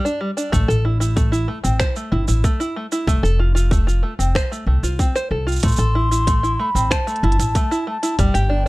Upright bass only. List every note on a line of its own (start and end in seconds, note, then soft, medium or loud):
0.53 0.67 A1 medium
0.69 1.45 A1 medium
1.65 1.78 A1 medium
2.12 2.26 G1 medium
2.28 2.42 A1 medium
3.07 3.21 F1 medium
3.23 4.00 F1 medium
4.19 4.33 F1 medium
4.66 4.81 C2 medium
4.83 4.97 C2 medium
5.31 5.58 C2 medium
5.63 5.77 A1 medium
5.78 6.55 A1 medium
6.75 6.89 A1 medium
7.23 7.37 G1 loud
7.39 7.53 A1 medium
8.19 8.33 G1 medium
8.35 8.68 G1 medium